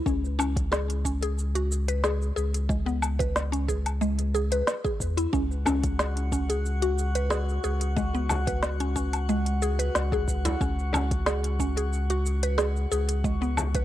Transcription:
0.06 2.31 C#2 loud
0.06 0.23 C#4 medium
0.06 kick loud
0.06 shaker soft
0.25 shaker soft
0.39 0.70 C#4 loud
0.39 low woodblock medium
0.39 shaker medium
0.56 kick loud
0.56 closed hi-hat soft
0.56 shaker soft
0.72 1.03 G#4 medium
0.72 snare loud
0.72 shaker soft
0.90 closed hi-hat soft
0.90 shaker soft
1.05 1.21 C#4 medium
1.05 kick medium
1.05 shaker medium
1.23 1.54 G#4 medium
1.23 closed hi-hat soft
1.23 shaker soft
1.39 shaker soft
1.55 1.86 F#4 medium
1.55 closed hi-hat soft
1.55 shaker soft
1.72 shaker medium
1.88 2.03 B4 medium
1.88 closed hi-hat medium
1.88 shaker soft
2.04 2.35 G#4 medium
2.04 snare loud
2.04 shaker soft
2.22 shaker soft
2.36 4.62 C#2 medium
2.36 2.53 G#4 medium
2.36 shaker medium
2.54 closed hi-hat medium
2.54 shaker soft
2.69 2.86 G#3 medium
2.69 kick loud
2.69 shaker soft
2.86 3.18 B3 medium
2.86 shaker soft
3.02 low woodblock medium
3.02 shaker medium
3.19 3.34 B4 medium
3.19 kick loud
3.19 closed hi-hat soft
3.19 shaker soft
3.36 snare loud
3.36 shaker soft
3.52 3.67 C#4 medium
3.52 closed hi-hat soft
3.52 shaker soft
3.68 3.85 G#4 medium
3.68 kick medium
3.68 shaker medium
3.86 closed hi-hat soft
3.86 low woodblock medium
3.86 shaker soft
4.01 4.18 G#3 medium
4.01 shaker soft
4.19 closed hi-hat soft
4.19 shaker soft
4.35 4.50 G#4 medium
4.35 shaker medium
4.52 4.67 B4 medium
4.52 closed hi-hat medium
4.52 shaker soft
4.67 snare loud
4.67 shaker soft
4.85 4.99 G#4 medium
4.85 kick loud
4.85 shaker soft
5.00 5.27 E2 medium
5.00 kick medium
5.00 shaker medium
5.17 5.32 E4 medium
5.17 closed hi-hat medium
5.17 shaker soft
5.32 7.59 C#2 loud
5.32 5.50 C#4 medium
5.32 13.85 F#4 medium
5.32 13.85 F#5 medium
5.32 kick loud
5.32 shaker soft
5.52 shaker soft
5.66 5.98 C#4 medium
5.66 frame drum medium
5.66 low woodblock medium
5.66 shaker medium
5.84 kick loud
5.84 closed hi-hat soft
5.84 shaker soft
5.99 6.31 G#4 medium
5.99 snare loud
5.99 shaker soft
6.17 closed hi-hat soft
6.17 shaker soft
6.32 6.48 C#4 medium
6.32 kick medium
6.32 shaker medium
6.50 6.81 G#4 medium
6.50 closed hi-hat soft
6.50 shaker soft
6.66 shaker soft
6.82 7.14 F#4 medium
6.82 closed hi-hat soft
6.82 shaker soft
6.99 shaker medium
7.15 7.30 B4 medium
7.15 closed hi-hat medium
7.15 shaker soft
7.30 7.62 G#4 medium
7.30 snare medium
7.30 shaker soft
7.49 shaker soft
7.64 9.90 C#2 medium
7.64 7.81 G#4 medium
7.64 shaker medium
7.81 closed hi-hat medium
7.81 shaker soft
7.97 8.13 G#3 medium
7.97 kick loud
7.97 shaker soft
8.15 8.46 B3 medium
8.15 shaker soft
8.29 frame drum medium
8.29 low woodblock medium
8.29 shaker medium
8.47 8.62 B4 medium
8.47 kick loud
8.47 closed hi-hat soft
8.47 shaker soft
8.63 snare loud
8.63 shaker soft
8.80 8.95 C#4 medium
8.80 closed hi-hat soft
8.80 shaker soft
8.96 9.12 C#4 medium
8.96 kick soft
8.96 shaker medium
9.13 closed hi-hat soft
9.13 low woodblock medium
9.13 shaker soft
9.29 9.46 G#3 medium
9.29 shaker soft
9.46 closed hi-hat soft
9.46 shaker soft
9.62 9.78 G#4 medium
9.62 shaker medium
9.79 9.94 B4 medium
9.79 closed hi-hat medium
9.79 shaker soft
9.95 10.56 C#2 loud
9.95 snare medium
9.95 shaker soft
10.12 10.27 G#4 medium
10.12 kick loud
10.12 shaker soft
10.28 kick medium
10.28 shaker medium
10.45 10.59 E4 medium
10.45 closed hi-hat medium
10.45 frame drum medium
10.45 shaker soft
10.61 12.86 C#2 loud
10.61 10.78 C#4 medium
10.61 kick loud
10.61 shaker soft
10.79 shaker soft
10.93 11.25 C#4 loud
10.93 frame drum medium
10.93 low woodblock medium
10.93 shaker medium
11.11 kick loud
11.11 closed hi-hat medium
11.11 shaker soft
11.26 11.58 G#4 medium
11.26 snare loud
11.26 shaker soft
11.44 closed hi-hat soft
11.44 shaker soft
11.60 11.76 C#4 medium
11.60 kick medium
11.60 shaker medium
11.77 12.08 G#4 medium
11.77 closed hi-hat medium
11.77 shaker soft
11.93 shaker soft
12.10 12.41 F#4 medium
12.10 closed hi-hat soft
12.10 shaker soft
12.26 shaker medium
12.43 12.58 B4 medium
12.43 closed hi-hat medium
12.43 shaker soft
12.58 12.90 G#4 medium
12.58 snare loud
12.58 shaker soft
12.76 shaker soft
12.91 13.85 C#2 loud
12.91 13.08 G#4 medium
12.91 shaker medium
13.09 closed hi-hat medium
13.09 shaker soft
13.24 13.41 G#3 medium
13.24 kick loud
13.24 shaker soft
13.42 13.73 B3 medium
13.42 shaker soft
13.57 frame drum medium
13.57 low woodblock medium
13.57 shaker medium
13.75 13.85 B4 medium
13.75 kick loud
13.75 closed hi-hat medium
13.75 shaker soft

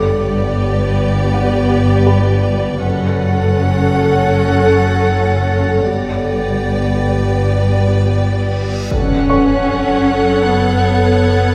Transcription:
0.00 2.80 G1 soft
0.00 2.84 G1 medium
0.00 2.80 G2 medium
0.00 2.80 B3 soft
0.00 2.80 G4 medium
0.00 2.84 G4 soft
0.00 2.84 B4 soft
0.00 2.04 D5 soft
0.00 2.80 D5 soft
0.00 2.84 D5 soft
0.00 0.52 B5 soft
0.00 2.04 D6 soft
1.34 3.57 F#5 soft
2.06 4.31 G4 soft
2.06 4.31 B5 soft
2.82 5.83 F#1 soft
2.82 5.88 F#1 medium
2.82 5.84 F#2 soft
2.82 5.84 C#4 soft
2.82 5.87 A4 soft
2.82 5.83 A4 medium
2.82 5.87 C#5 soft
2.82 5.87 F#5 soft
2.82 5.84 F#5 soft
2.82 8.49 A6 soft
2.82 7.74 A#6 soft
5.86 8.91 G1 medium
5.86 8.71 G1 soft
5.86 8.71 G2 soft
5.86 8.67 B3 soft
5.86 8.67 G4 soft
5.86 8.91 B4 soft
5.86 8.91 D5 soft
5.86 8.68 D5 soft
5.86 8.91 G5 soft
5.86 reverse cymbal soft
8.91 11.55 F#1 medium
8.91 11.55 F#2 soft
8.91 10.40 C#4 medium
8.91 11.55 A4 soft
8.91 11.55 C#5 soft
8.91 11.55 F#5 soft
8.91 11.55 F#6 soft
8.91 impact soft
9.29 11.53 C#5 soft
9.29 11.53 C#6 soft
9.68 11.55 G#6 soft
10.43 11.55 B3 medium
10.43 11.55 A6 soft

